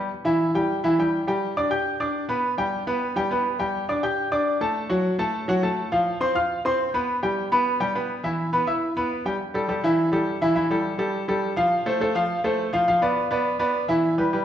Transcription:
upright piano
0.25 E3 E4 E5
0.55 G3 G4 G5
0.84 E3 E4 E5
0.99 G3 G4 G5
1.27 G3 G4 G5
1.57 D4 D5 D6
1.70 G4 G5 G6
2.00 D4 D5 D6
2.29 B3 B4 B5
2.58 G3 G4 G5
2.87 B3 B4 B5
3.16 G3 G4 G5
3.31 B3 B4 B5
3.59 G3 G4 G5
3.89 D4 D5 D6
4.03 G4 G5 G6
4.32 D4 D5 D6
4.61 A3 A4 A5
4.90 F#3 F#4 F#5
5.19 A3 A4 A5
5.48 F#3 F#4 F#5
5.63 A3 A4 A5
5.92 F3 F4 F5
6.21 C4 C5 C6
6.35 F4 F5 F6
6.65 C4 C5 C6
6.94 B3 B4 B5
7.23 G3 G4 G5
7.52 B3 B4 B5
7.80 G3 G4 G5
7.95 B3 B4 B5
8.23 E3 E4 E5
8.53 B3 B4 B5
8.67 E4 E5 E6
8.97 B3 B4 B5
9.25 G3 G4 G5
9.54 G3 G4 A4
9.68 G3 G4 A4
9.84 E3 E4 E5
10.12 G3 G4 A4
10.41 E3 E4 E5
10.55 E3 E4 E5
10.70 G3 G4 A4
10.98 G3 G4 A4
11.28 G3 G4 A4
11.56 F3 F4 F5
11.86 A3 A4 C5
12.00 A3 A4 C5
12.15 F3 F4 F5
12.44 A3 A4 C5
12.73 F3 F4 F5
12.88 F3 F4 F5
13.02 B3 B4 D5
13.31 B3 B4 D5
13.59 B3 B4 D5
13.88 E3 E4 E5
14.18 G3 G4 B4
14.33 G3 G4 B4

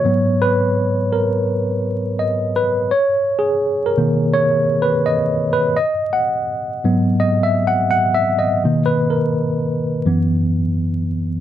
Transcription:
tine electric piano
Already playing: C#5
0.04 G#2 F#3 B3
0.42 B4
1.13 A#4
2.19 D#5
2.56 B4
2.91 C#5
3.39 G#4
3.86 A#4
3.97 B2 D#3 A#3
4.34 C#5
4.82 B4
5.06 D#5
5.53 B4
5.77 D#5
6.13 F#5
6.84 G#2 F#3 B3
7.20 D#5
7.43 E5
7.67 F#5
7.91 F#5
8.14 E5
8.39 D#5
8.64 B2 D#3 A#3
8.86 B4
9.10 A#4
10.06 F#2 E3 B3

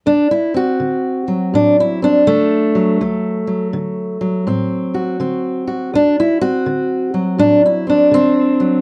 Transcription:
steel-string acoustic guitar
0.06 D2 D4
0.31 E4
0.54 C4 F#4
0.80 D3
1.28 F#3
1.54 A2 D4
1.80 E4
2.02 C4 D4
2.27 D3 A3
2.75 F#3
3.01 D2 F#3
3.47 F#3
3.73 D3
4.21 F#3
4.47 A2 C4
4.94 F#4
5.20 D3 C4
5.67 F#4
5.94 D2 D4
6.20 E4
6.41 C4 F#4
6.66 D3
7.14 F#3
7.38 A2 D4
7.66 E4
7.87 C4 D4
8.11 D3 C4
8.60 F#3

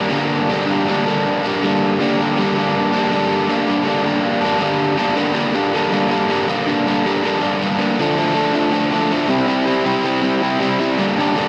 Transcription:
overdriven electric guitar
Already playing: G3 A#3 D4
0.10 G2 D3 G3 A#3 D4
0.49 G2 D3 G3 A#3
0.54 D4
0.66 A#3 D4
0.71 G3
0.86 D3 G3 A#3
0.91 D4
1.06 G3 A#3 D4
1.43 G3 A#3 D4
1.63 G2 D3 G3 A#3
1.67 D4
1.99 G2 D3 G3 A#3
2.04 D4
2.17 A#3 D4
2.22 G3
2.37 D3 G3 A#3
2.41 D4
2.55 G3 A#3 D4
2.92 G3 A#3 D4
3.11 G2 D3 G3 A#3 D4
3.47 G2 D3 G3
3.51 A#3 D4
3.66 G3 A#3 D4
3.83 D3 G3 A#3
3.88 D4
4.04 G3 A#3 D4
4.41 A#3 D4
4.46 G3
4.59 G2 D3 G3 A#3
4.63 D4
4.97 G2 D3 G3 A#3 D4
5.15 G2 D3 G3 A#3 D4
5.33 G2 D3 G3 A#3 D4
5.53 G2 D3 G3 A#3 D4
5.74 G2 D3 G3 A#3 D4
5.91 G2 D3 G3 A#3 D4
6.09 G2 D3 G3 A#3 D4
6.29 G2 D3 G3 A#3 D4
6.48 G2 D3 G3 A#3 D4
6.67 G2 D3 G3 A#3 D4
6.87 G2 D3 G3 A#3 D4
7.04 G2 D3 G3 A#3 D4
7.24 G2 D3 G3 A#3 D4
7.39 G2 D3 G3 A#3
7.43 D4
7.61 G2 D3 G3 A#3 D4
7.78 G2 D3 G3 A#3 D4
7.99 D3 F3 A3 D4
8.16 D3 F3 A3 D4
8.34 D3 F3 A3 D4
8.53 D3 F3 A3 D4
8.71 D3 F3 A3 D4
8.92 D3 F3 A3 D4
9.11 D3 F3 A3 D4
9.28 C3 G3 C4 E4
9.47 C3 G3 C4 E4
9.65 C3 G3 C4 E4
9.85 C3 G3 C4 E4
10.03 C3 G3 C4 E4
10.22 C3 G3 C4 E4
10.42 C3 G3 C4 E4
10.60 C3 G3 C4 E4
10.79 C3 G3 C4 E4
10.97 G2 D3 G3 A#3 D4
11.17 G2 D3 G3 A#3 D4
11.35 G2 D3 G3 A#3 D4

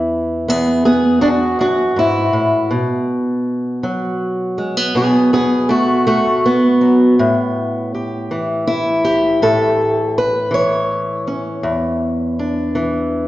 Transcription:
steel-string acoustic guitar
Already playing: E2 E3 E4
0.48 E2 B3 G#4
0.85 B3 G#4
1.21 D4 F#4
1.59 F#2 D4 F#4
1.96 G#2 E4
2.33 A2
2.71 B2
3.83 F#3
4.58 G#3
4.77 B3
4.95 B2 B3 G#4
5.33 B3 G#4
5.69 A3 F#4
6.07 A3 F#4
6.46 B3
6.81 F#3
7.19 A2
7.94 G4
8.31 E3
8.67 E4
9.05 G4
9.42 A2 A4
10.18 B4
10.51 E3 C#5
11.27 C#4
11.63 E2
12.39 D4
12.75 E3

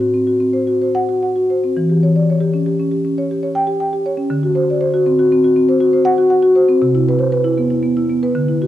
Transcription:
marimba
Already playing: A2
0.01 F#4
0.14 C4
0.27 F#4
0.40 C4
0.53 C5
0.67 F#4
0.82 C5
0.95 F#5
1.09 F#4
1.23 F#5
1.36 F#4
1.50 C5
1.64 C4
1.77 E3
1.90 G4
2.03 C#5
2.16 D5
2.30 C#5
2.41 G4
2.54 C#4
2.66 G4
2.80 C#4
2.91 G4
3.05 C#4
3.18 C#5
3.31 G4
3.43 C#5
3.55 G5
3.67 G4
3.80 G5
3.93 G4
4.06 C#5
4.17 C#4
4.30 D3
4.43 F#4
4.55 C5
4.70 D5
4.81 C5
4.94 F#4
5.06 C4
5.19 F#4
5.32 C4
5.44 F#4
5.56 C4
5.69 C5
5.80 F#4
5.93 C5
6.05 F#5
6.18 F#4
6.30 F#5
6.42 F#4
6.56 C5
6.69 C4
6.82 C3
6.95 E4
7.09 B4
7.19 C5
7.32 B4
7.44 E4
7.58 B3
7.70 E4
7.83 B3
7.97 E4
8.10 B3
8.23 B4
8.35 D3
8.48 E4
8.62 F#4

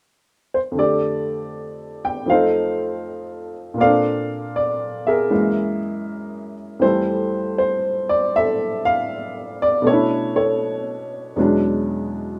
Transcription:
upright piano
0.54 C5
0.71 F2 D3
0.78 A3 G4 A4 D5
2.05 G5
2.26 F2 F3 F5
2.30 A3 D#4 A4 C5
3.74 A#2 A#3
3.80 C4 A4 D5 F5
3.85 D4
4.56 D5
5.07 G#4 A#4 E5
5.30 F#2 E3 G#3 A#3
6.79 F2 E3 G3 C5
6.84 A3 A4
7.58 C5
8.09 D5
8.36 A4 E5
8.85 F5
9.62 D5
9.82 B2 A3
9.87 C#4 D4 A4 C#5
9.93 E4
10.36 A4 C#5
11.36 E2 B2 F#3 G#3 C#4
11.41 D4

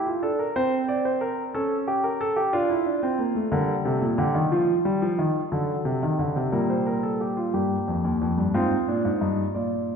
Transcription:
grand piano
Already playing: E4
0.07 F4
0.23 D4 A4
0.39 A#4
0.56 C4 C5
0.88 D5
1.05 C5
1.21 A#4
1.54 C#4 A4
1.88 G4
2.04 A#4
2.21 A4
2.36 G4
2.53 D4 F4
2.70 E4
2.86 D4
3.03 C4
3.19 A#3
3.35 A3
3.52 D3 G3 A#4
3.85 C3 A4
4.01 A#2
4.18 D3 G4
4.35 D#3
4.52 F3 F4
4.85 G3
5.02 F3
5.19 D#3
5.52 D3 F#3 A4
5.85 C3
6.03 D#3
6.19 D3
6.36 C3
6.52 A#2 G3 A#4
6.70 C5
6.86 A#4
7.03 A4
7.21 G4
7.37 F4
7.54 G2 A#3 G4
7.88 F2
8.04 D#2
8.21 F2
8.38 G2
8.54 G#2 C4 F4
8.88 A#2 D4
9.05 G#2
9.21 G2 D#4
9.55 A#2 F4 D5

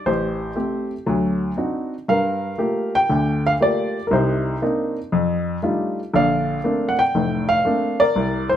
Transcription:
grand piano
0.06 A1 G4 C5
0.56 A3 C4 G4
1.06 D2 F#3
1.57 C4 D4 D#4 F#4
2.08 G2 A#4 F5
2.58 A3 A#3 F4 G4
2.95 G5
3.09 D2 D3
3.47 F5
3.60 A3 A#3 F4 G4 D5
4.07 C2 C3 A#4
4.13 D#4 C5
4.62 A#3 C4 D4 D#4
5.12 F2
5.63 G3 A3 D4 D#4 F4
6.13 A#1 D3 D5 F5
6.64 A3 A#3 C4 D4
6.89 F#5
6.99 G5
7.15 F1 A2
7.49 F5
7.65 A3 A#3 C4 D4
8.00 A#4 D5
8.16 C2
8.49 C5

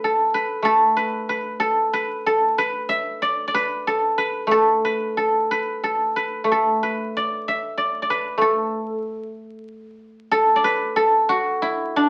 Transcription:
guzheng
Already playing: A3 B4
0.04 A4
0.34 B4
0.62 A3 A4
0.97 B4
1.29 B4
1.60 A4
1.93 B4
2.26 A4
2.58 B4
2.89 E5
3.22 D5
3.48 D5
3.54 B4
3.87 A4
4.18 B4
4.47 A3
4.51 A4
4.85 B4
5.17 A4
5.51 B4
5.84 A4
6.16 B4
6.44 A3
6.52 A4
6.83 B4
7.17 D5
7.48 E5
7.78 D5
8.02 D5
8.10 B4
8.38 A3 A4
10.31 A4
10.56 D5
10.64 B4
10.96 A4
11.29 F#4
11.62 E4
11.96 D4

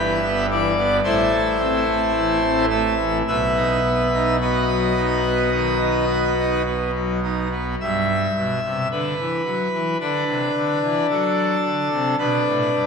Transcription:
pipe organ
Already playing: G1 G2 E3 G4 B4 E5
0.22 B3
0.50 E3 D5
0.77 B3
1.04 A1 A2 E4 A4 C5
1.32 A3
1.60 C4
1.87 A3
2.14 E3
2.41 C4
2.70 A3 E5
2.99 E3
3.27 B1 B2 B4 E5
3.56 D#4
3.85 B3
4.14 D#4
4.41 B3 F#4 B4 D#5
4.69 F#3
4.97 D#4
5.25 B3
5.52 D#3
5.80 D#4
6.09 B3
6.39 D#4
6.66 B3
6.95 F#3
7.23 D#4
7.51 B3
7.81 G2 E5
8.36 B2
8.64 C3
8.91 D3 B4
9.19 E3
9.45 F#3
9.73 E3
10.00 D3 D4 B4
10.28 C3
10.55 D3
10.82 E3
11.10 F#3 A4
11.65 D3
11.92 C3
12.18 B2 D4 B4
12.46 A2
12.73 G2

